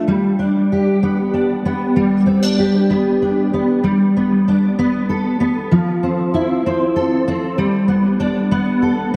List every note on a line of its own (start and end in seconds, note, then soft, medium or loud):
0.00 0.13 A3 soft
0.00 0.39 D4 soft
0.00 0.13 F4 soft
0.08 1.96 G3 medium
0.39 1.33 D4 soft
0.72 2.59 G4 soft
1.03 1.65 B3 soft
1.34 2.26 D4 soft
1.65 2.90 B3 soft
1.96 3.82 G3 medium
2.26 2.42 C4 soft
2.42 3.20 D4 soft
2.59 3.90 G4 soft
2.90 3.53 B3 soft
3.22 3.90 D4 soft
3.53 3.90 B3 soft
3.84 5.71 G3 medium
4.17 4.78 B3 soft
4.48 5.78 D4 soft
4.79 5.39 B3 medium
5.09 6.95 A4 soft
5.40 5.77 B3 medium
5.71 7.58 F3 medium
6.03 6.65 C4 soft
6.34 7.64 E4 medium
6.66 7.26 C4 medium
6.96 7.64 A4 medium
7.28 7.64 C4 medium
7.58 9.16 G3 medium
7.88 8.51 B3 soft
8.20 9.16 D4 medium
8.51 9.13 B3 medium
8.82 9.16 A4 medium